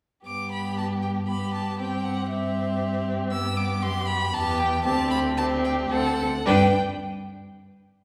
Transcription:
0.26 1.76 G2 soft
0.26 1.25 B3 soft
0.26 1.25 G4 soft
0.26 0.50 D6 medium
0.52 0.77 B5 medium
0.78 0.86 A5 medium
1.03 1.11 G5 soft
1.27 1.81 B3 soft
1.27 1.79 G4 soft
1.27 1.53 B5 medium
1.54 1.79 A5 medium
1.79 3.29 G2 soft
1.79 2.30 C4 soft
1.79 2.29 G4 soft
1.79 2.07 G5 medium
2.05 2.30 F#5 medium
2.30 3.33 C4 soft
2.30 3.30 G4 soft
2.30 3.05 E5 medium
3.32 3.84 G2 medium
3.32 4.34 B3 medium
3.32 4.32 G4 medium
3.32 3.59 E6 medium
3.57 3.84 D6 medium
3.83 4.34 F#2 medium
3.83 4.09 C6 medium
4.07 4.35 B5 medium
4.33 4.87 E2 medium
4.33 4.85 B3 medium
4.33 4.84 G4 medium
4.33 4.61 A5 medium
4.59 4.84 G5 medium
4.85 5.91 D2 medium
4.85 5.37 C4 medium
4.85 5.37 G4 medium
4.85 5.10 A5 medium
5.11 5.19 B5 medium
5.38 5.90 C4 medium
5.38 5.93 G4 medium
5.38 5.46 A5 medium
5.65 5.73 G5 medium
5.91 6.24 D2 medium
5.91 6.24 C4 medium
5.91 6.25 A4 medium
5.91 6.45 F#5 medium
6.46 6.76 G2 medium
6.46 6.76 D4 medium
6.46 6.76 B4 medium
6.46 6.76 G5 medium

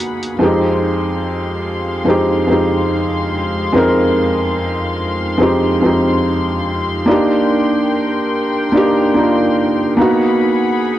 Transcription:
0.00 0.43 A#3 medium
0.00 0.43 B3 medium
0.00 0.43 D#4 medium
0.00 0.36 F#4 medium
0.00 0.37 G#4 medium
0.00 0.43 G#4 medium
0.00 0.37 F#5 medium
0.00 0.37 B5 medium
0.23 closed hi-hat soft
0.39 1.98 F2 medium
0.39 1.99 G#3 medium
0.39 7.04 G#3 medium
0.39 2.00 C4 medium
0.39 7.04 F5 medium
0.39 9.95 C6 medium
0.43 2.00 D#4 medium
0.43 2.01 G4 medium
2.05 2.45 F2 medium
2.05 2.46 G#3 medium
2.05 2.47 C4 medium
2.05 2.47 D#4 medium
2.10 2.48 G4 loud
2.47 3.67 F2 medium
2.47 3.68 G#3 medium
2.47 3.68 C4 medium
2.47 3.69 D#4 medium
2.52 3.70 G4 medium
3.73 5.32 F2 medium
3.73 5.33 G#3 medium
3.73 5.33 C4 medium
3.73 5.34 D#4 medium
3.77 5.34 A#4 loud
5.38 5.79 F2 medium
5.38 5.79 G#3 medium
5.38 5.80 C4 medium
5.38 5.81 D#4 medium
5.42 5.81 G4 loud
5.82 7.01 F2 medium
5.82 7.02 G#3 medium
5.82 7.02 C4 medium
5.82 7.03 D#4 medium
5.86 7.03 G4 medium
7.06 8.65 A#3 medium
7.06 8.66 D4 medium
7.06 8.67 D#4 medium
7.06 9.96 A#4 medium
7.06 9.96 G5 medium
7.11 8.68 G4 loud
8.72 9.13 A#3 medium
8.72 9.14 D4 medium
8.72 9.14 D#4 medium
8.77 9.15 G4 loud
9.14 9.95 A#3 medium
9.14 9.99 D4 medium
9.14 9.98 D#4 medium
9.19 10.01 F4 medium
9.97 10.99 A#3 medium
9.97 10.99 B3 medium
9.97 10.99 D#4 medium
9.97 10.99 G#4 medium
9.97 10.99 F#5 medium
9.97 10.99 B5 medium
10.01 10.99 F#4 loud

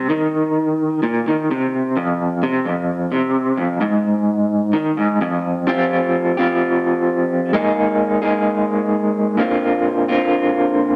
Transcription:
0.10 1.02 D#3 loud
1.03 1.25 A#2 medium
1.28 1.49 D#3 medium
1.51 1.96 C3 medium
1.97 2.42 F2 loud
2.43 2.65 C3 loud
2.65 3.11 F2 loud
3.12 3.57 C3 loud
3.57 3.80 F2 loud
3.81 4.73 G#2 loud
4.73 4.96 D#3 loud
4.97 5.20 G#2 loud
5.21 5.67 F2 loud
5.67 6.35 F3 medium
5.67 6.36 C4 medium
5.67 6.36 F4 medium
5.67 6.36 G4 medium
6.37 7.53 F3 medium
6.37 7.53 C4 medium
6.37 7.53 F4 medium
6.37 7.52 G4 medium
7.53 8.22 G#3 medium
7.53 8.23 A#3 medium
7.53 8.21 D#4 medium
7.53 8.21 G#4 medium
8.22 9.38 G#3 medium
8.22 9.38 A#3 medium
8.22 9.38 D#4 medium
8.22 9.37 G#4 medium
9.37 10.07 A#2 medium
9.37 10.07 D3 medium
9.37 10.08 A#3 medium
9.37 10.08 C4 medium
9.37 10.08 F4 loud
10.08 10.96 A#2 medium
10.08 10.96 D3 medium
10.08 10.96 A#3 medium
10.08 10.96 C4 medium
10.08 10.96 F4 medium

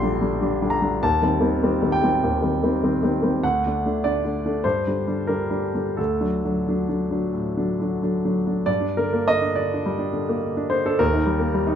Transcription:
0.00 1.04 A#1 medium
0.00 0.02 D3 soft
0.00 0.19 D3 soft
0.00 0.03 G3 soft
0.00 0.20 G3 soft
0.00 0.03 D4 soft
0.00 0.20 D4 soft
0.00 1.04 G5 medium
0.00 0.71 C6 medium
0.21 0.38 D3 soft
0.21 0.39 G3 soft
0.21 0.39 D4 soft
0.41 0.59 D3 soft
0.41 0.59 G3 soft
0.41 0.59 D4 soft
0.61 0.79 D3 soft
0.61 0.79 G3 soft
0.61 0.80 D4 soft
0.70 1.01 A#5 medium
0.82 1.00 D3 soft
0.82 1.00 G3 soft
0.82 1.01 D4 soft
1.03 1.22 D#2 soft
1.03 1.94 A5 medium
1.22 1.39 D#3 soft
1.22 1.40 G3 soft
1.22 1.41 C4 soft
1.41 1.60 D#3 soft
1.41 1.60 G3 soft
1.41 1.61 C4 soft
1.63 1.81 D#3 soft
1.63 1.80 G3 soft
1.63 1.81 C4 soft
1.82 2.01 D#3 soft
1.82 2.01 G3 soft
1.82 2.01 C4 soft
1.92 3.42 G5 medium
2.03 2.21 D#3 soft
2.03 2.22 G3 soft
2.03 2.22 C4 soft
2.24 2.43 D#2 soft
2.42 2.61 D#3 soft
2.42 2.61 G3 soft
2.42 2.61 C4 soft
2.63 2.81 D#3 soft
2.63 2.81 G3 soft
2.63 2.82 C4 soft
2.83 3.00 D#3 soft
2.83 3.00 G3 soft
2.83 3.01 C4 soft
3.03 3.20 D#3 soft
3.03 3.21 G3 soft
3.03 3.21 C4 soft
3.23 3.40 D#3 soft
3.23 3.41 G3 soft
3.23 3.41 C4 soft
3.43 3.63 D2 soft
3.43 4.05 F#5 medium
3.65 3.83 D3 soft
3.65 3.83 A3 soft
3.65 3.84 D4 soft
3.85 4.03 D3 soft
3.85 4.03 A3 soft
3.85 4.03 D4 soft
4.04 4.23 D3 soft
4.04 4.23 A3 soft
4.04 4.23 D4 soft
4.04 4.64 D5 medium
4.24 4.42 D3 soft
4.24 4.42 A3 soft
4.24 4.42 D4 soft
4.45 4.63 D3 soft
4.45 4.64 A3 soft
4.45 4.63 D4 soft
4.64 4.85 G2 soft
4.64 5.29 C5 medium
4.87 5.05 D3 soft
4.87 5.06 G3 soft
4.87 5.06 D4 soft
5.07 5.26 D3 soft
5.07 5.27 G3 soft
5.07 5.27 D4 soft
5.27 5.48 D3 soft
5.27 5.48 G3 soft
5.27 5.49 D4 soft
5.27 5.97 A#4 medium
5.50 5.71 D3 soft
5.50 5.71 G3 soft
5.50 5.71 D4 soft
5.74 5.95 D3 soft
5.74 5.95 G3 soft
5.74 5.96 D4 soft
5.97 6.21 D2 soft
5.97 8.36 A4 soft
6.21 6.42 D3 soft
6.21 6.42 F#3 soft
6.21 6.42 D4 soft
6.44 6.65 D3 soft
6.44 6.65 F#3 soft
6.44 6.65 D4 soft
6.67 6.87 D3 soft
6.67 6.87 F#3 soft
6.67 6.88 D4 soft
6.88 7.09 D3 soft
6.88 7.09 F#3 soft
6.88 7.10 D4 soft
7.11 7.31 D3 soft
7.11 7.32 F#3 soft
7.11 7.32 D4 soft
7.33 7.56 A2 soft
7.57 7.77 D3 soft
7.57 7.77 F#3 soft
7.57 7.78 D4 soft
7.80 8.00 D3 soft
7.80 8.00 F#3 soft
7.80 8.01 D4 soft
8.02 8.23 D3 soft
8.02 8.23 F#3 soft
8.02 8.23 D4 soft
8.25 8.45 D3 soft
8.25 8.45 F#3 soft
8.25 8.45 D4 soft
8.46 8.66 D3 soft
8.46 8.65 F#3 soft
8.46 8.66 D4 soft
8.66 9.80 G2 soft
8.66 8.97 D5 medium
8.81 9.05 D4 soft
8.97 9.22 D3 soft
8.97 9.27 A#4 medium
9.13 9.36 A#3 soft
9.28 9.51 D3 soft
9.28 9.56 D#5 medium
9.42 9.65 D4 soft
9.55 9.79 D3 soft
9.55 10.71 D5 medium
9.74 9.95 D4 soft
9.86 10.08 G3 soft
9.99 10.22 D4 soft
10.13 10.36 D3 soft
10.29 10.51 A#3 soft
10.43 10.66 D3 soft
10.57 10.80 D4 soft
10.70 10.94 D3 soft
10.70 10.85 C5 medium
10.86 11.00 D4 soft
10.86 11.00 A4 medium
10.99 11.75 D#2 medium
10.99 11.75 A#4 medium
11.14 11.36 D#4 soft
11.26 11.49 G3 soft
11.39 11.62 A#3 soft
11.54 11.75 G3 soft
11.67 11.75 D#4 soft

